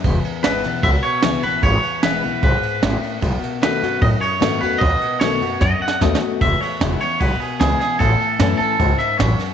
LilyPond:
<<
  \new Staff \with { instrumentName = "Clean electric guitar" } { \time 4/4 \key e \major \tempo 4 = 151 r4 b'4 e''8 cis''4 b'8 | cis''4 b'4 b'4. r8 | r4 b'4 dis''8 cis''4 b'8 | dis''4 cis''4 dis''8 fis''8 dis''4 |
e''8 cis''4 cis''8 b'8 gis'8 gis'8 gis'8 | a'4. a'4 e''8 cis''4 | }
  \new Staff \with { instrumentName = "Steel-string acoustic guitar" } { \time 4/4 \key e \major << { r4 <e gis b e'>8 <b e'>8 r4 <e gis b e'>8 <b e'>8 | r4 <e gis b e'>8 <b e'>8 r2 | r4 <dis a b fis'>8 <b fis'>8 r4 <dis a b fis'>8 <b fis'>8 | r4 <dis a b fis'>8 <b fis'>8 r4 <dis a b fis'>8 <b fis'>8 |
r4 <e gis b e'>8 <b e'>8 r4 <e gis b e'>8 <b e'>8 | r4 <e a cis' e'>8 <cis' e'>8 r2 | } \\ { e,2 b,2 | e,2 gis,4 a,4 | b,2 fis,2 | b,2 fis,2 |
e,2 b,2 | a,2 gis,4 fis,4 | } >> }
  \new Staff \with { instrumentName = "Upright bass" } { \clef bass \time 4/4 \key e \major e,,8 r8 gis,,8 b,,8 cis,8 r8 cis,8 a,,8 | gis,,8 r8 e,,8 b,,8 b,,8 r8 gis,,8 r8 | b,,8 r8 dis,8 fis,8 a,8 r8 gis,8 e,8 | dis,8 r8 b,,8 fis,8 fis,8 r8 dis,8 r8 |
e,,8 r8 e,,8 r8 b,,8 r8 cis,8 r8 | a,,8 r8 fis,8 r8 cis,8 r8 a,,8 r8 | }
  \new DrumStaff \with { instrumentName = "Drums" } \drummode { \time 4/4 <bd cymr>8 cymr8 <cymr sn>8 <cymr sn>8 <bd cymr>8 cymr8 <cymr sn>8 cymr8 | <bd cymr>8 cymr8 <cymr sn>8 cymr8 <bd cymr>8 cymr8 <cymr sn>8 cymr8 | <bd cymr>8 cymr8 <cymr sn>8 <cymr sn>8 <bd cymr>8 cymr8 <cymr sn>8 cymr8 | <bd cymr>8 cymr8 <cymr sn>8 cymr8 \tuplet 3/2 { <bd sn>8 r8 sn8 <bd sn>8 sn8 r8 } |
<bd cymr>8 cymr8 <cymr sn>8 cymr8 <bd cymr>8 cymr8 <cymr sn>8 <cymr sn>8 | <bd cymr sn>8 cymr8 <cymr sn>8 cymr8 <bd cymr>8 <cymr sn>8 <cymr sn>8 <cymr sn>8 | }
>>